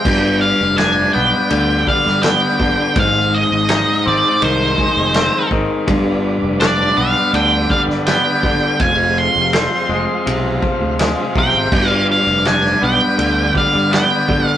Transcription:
0.00 2.93 D4 medium
0.00 2.93 B4 medium
0.00 2.93 D5 medium
0.00 0.38 G5 loud
0.05 0.52 G1 loud
0.05 1.88 G2 medium
0.05 2.94 G3 medium
0.05 kick loud
0.05 crash loud
0.41 0.75 F5 medium
0.61 1.07 F1 medium
0.78 2.60 D4 medium
0.78 1.13 G#5 loud
0.78 snare loud
0.78 ride bell medium
1.13 1.31 B1 loud
1.13 2.23 B3 medium
1.13 1.88 G5 medium
1.50 1.82 D2 medium
1.50 2.59 D3 medium
1.50 ride bell medium
1.87 2.97 G3 medium
1.87 2.22 F5 medium
1.87 kick medium
2.06 2.37 G2 medium
2.06 snare soft
2.23 2.97 B3 medium
2.23 2.98 G5 loud
2.23 snare loud
2.23 ride bell medium
2.60 2.76 G1 medium
2.60 2.96 D3 medium
2.60 kick medium
2.96 3.43 G#1 medium
2.96 4.79 G#2 medium
2.96 5.85 G#3 medium
2.96 5.85 D#4 medium
2.96 5.85 C5 medium
2.96 3.36 F5 medium
2.96 kick loud
2.96 ride bell medium
3.34 4.07 D#5 medium
3.52 3.83 G#1 medium
3.69 5.51 D#4 medium
3.69 snare loud
3.69 ride bell medium
4.06 4.22 G#1 loud
4.06 5.14 C4 medium
4.06 4.44 D5 medium
4.42 4.74 C2 loud
4.42 5.51 D#3 medium
4.42 5.49 C5 medium
4.42 ride bell medium
4.78 5.88 G#3 medium
4.78 kick medium
4.97 5.28 F1 medium
5.14 5.88 C4 medium
5.14 snare loud
5.14 ride bell medium
5.51 5.67 G#1 medium
5.51 5.88 D#3 medium
5.51 kick medium
5.86 6.35 G1 loud
5.86 7.70 G2 medium
5.86 8.76 G3 medium
5.86 8.76 D4 medium
5.86 8.76 B4 medium
5.86 8.76 D5 medium
5.86 kick loud
5.86 ride bell medium
6.42 6.89 F1 medium
6.60 8.43 D4 medium
6.60 6.98 D5 medium
6.60 snare loud
6.60 ride bell medium
6.97 7.13 B1 medium
6.97 8.07 B3 medium
6.97 7.31 F5 medium
7.33 7.65 D2 loud
7.33 8.44 D3 medium
7.33 7.69 G5 medium
7.33 ride bell medium
7.70 8.80 G3 medium
7.70 7.81 F5 medium
7.70 kick medium
7.87 8.19 G2 medium
7.87 snare soft
8.07 8.80 B3 medium
8.07 8.80 G5 medium
8.07 snare loud
8.07 ride bell medium
8.43 8.59 G1 medium
8.43 8.81 D3 medium
8.43 kick medium
8.79 9.27 F1 medium
8.79 10.62 F2 medium
8.79 11.69 G#3 medium
8.79 11.69 F4 medium
8.79 11.69 C5 medium
8.79 11.69 F5 medium
8.79 9.18 G#5 medium
8.79 kick loud
8.79 ride bell medium
9.18 10.59 C6 loud
9.35 9.66 F1 medium
9.53 11.35 C4 medium
9.53 snare loud
9.53 ride bell medium
9.89 10.05 F1 medium
9.89 10.98 G#3 medium
10.26 10.58 B1 loud
10.26 11.35 C3 medium
10.26 ride bell medium
10.62 11.72 F3 medium
10.62 kick medium
10.80 11.12 D2 medium
10.99 11.72 G#3 medium
10.99 snare loud
10.99 ride bell medium
11.35 11.52 B1 medium
11.35 11.72 C3 medium
11.35 11.89 G5 medium
11.35 kick medium
11.54 11.70 G#1 medium
11.71 12.19 G1 loud
11.71 13.55 G2 medium
11.71 14.57 G3 medium
11.71 14.57 D4 medium
11.71 14.57 B4 medium
11.71 14.57 D5 medium
11.71 kick loud
11.71 crash medium
11.89 12.06 F5 medium
12.12 12.47 F5 medium
12.27 12.74 F1 medium
12.45 14.28 D4 medium
12.45 12.84 G#5 loud
12.45 snare loud
12.45 ride bell medium
12.65 snare soft
12.81 12.98 B1 medium
12.81 13.90 B3 medium
12.81 13.52 G5 loud
13.18 13.50 D2 loud
13.18 14.27 D3 medium
13.18 ride bell medium
13.54 14.57 G3 medium
13.54 13.93 F5 medium
13.54 kick medium
13.74 14.05 G2 medium
13.91 14.57 B3 medium
13.91 14.49 G5 loud
13.91 snare loud
13.91 ride bell medium
14.28 14.44 G1 medium
14.28 14.57 D3 medium
14.28 kick medium
14.49 14.57 F5 loud

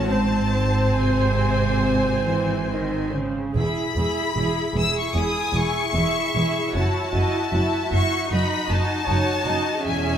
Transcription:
0.07 3.35 G#1 soft
0.07 0.87 G#2 soft
0.07 3.31 C4 soft
0.07 3.13 C5 soft
0.07 3.35 C5 soft
0.07 0.95 A5 medium
0.96 2.24 C3 soft
0.96 3.14 G#5 medium
2.27 2.70 E3 soft
2.70 3.13 D#3 soft
3.13 3.56 C#3 soft
3.55 3.63 E1 soft
3.55 3.64 E2 soft
3.55 3.95 E4 soft
3.55 3.95 G#4 soft
3.55 4.73 B5 medium
3.96 4.05 E1 soft
3.96 4.04 E2 soft
3.96 4.35 E4 soft
3.96 4.35 G#4 soft
4.36 4.44 E1 soft
4.36 4.45 E2 soft
4.36 4.75 E4 soft
4.36 4.75 G#4 soft
4.75 4.84 E1 soft
4.75 4.83 E2 soft
4.75 5.14 E4 soft
4.75 5.15 G#4 soft
4.75 4.97 E6 medium
4.98 5.16 C#6 medium
5.15 5.23 E1 soft
5.15 5.23 E2 soft
5.15 5.54 E4 soft
5.15 5.54 G#4 soft
5.15 5.91 G#5 medium
5.15 5.56 D#6 medium
5.53 5.62 E1 soft
5.53 5.61 E2 soft
5.53 5.94 E4 soft
5.53 5.94 G#4 soft
5.53 6.76 C#6 medium
5.94 6.02 E1 soft
5.94 6.03 E2 soft
5.94 6.34 E4 soft
5.94 6.34 G#4 soft
5.94 6.75 E5 medium
6.35 6.43 E1 soft
6.35 6.44 E2 soft
6.35 6.73 E4 soft
6.35 6.74 G#4 soft
6.74 6.82 F#1 medium
6.74 6.83 F#2 soft
6.74 7.12 E4 soft
6.74 7.12 F#4 soft
6.74 7.15 C#5 soft
6.74 7.90 A5 medium
7.13 7.21 F#1 soft
7.13 7.22 F#2 soft
7.13 7.51 E4 soft
7.13 7.51 F#4 soft
7.13 7.53 D#5 medium
7.52 7.60 F#1 soft
7.52 7.62 F#2 soft
7.52 7.89 E4 soft
7.52 7.90 F#4 soft
7.52 8.30 E5 soft
7.91 8.00 F#1 soft
7.91 8.01 F#2 soft
7.91 8.30 E4 soft
7.91 8.29 F#4 soft
7.91 8.32 C#6 medium
8.30 8.39 F#1 medium
8.30 8.40 F#2 soft
8.30 8.67 D#4 medium
8.30 8.67 F#4 soft
8.30 9.06 D#5 medium
8.30 8.70 B5 medium
8.68 8.77 F#1 soft
8.68 8.78 F#2 soft
8.68 9.05 D#4 soft
8.68 9.05 F#4 soft
8.68 9.85 A5 medium
9.06 9.16 F#1 medium
9.06 9.17 F#2 medium
9.06 9.43 D#4 soft
9.06 9.44 F#4 soft
9.06 9.46 C#5 medium
9.45 9.54 F#1 soft
9.45 9.55 F#2 soft
9.45 9.83 D#4 soft
9.45 9.83 F#4 soft
9.45 9.85 D#5 medium
9.83 10.18 E1 medium
9.83 10.18 E2 medium
9.83 10.18 C#4 medium
9.83 10.18 G#4 medium
9.83 10.18 E5 medium
9.83 10.18 G#5 medium

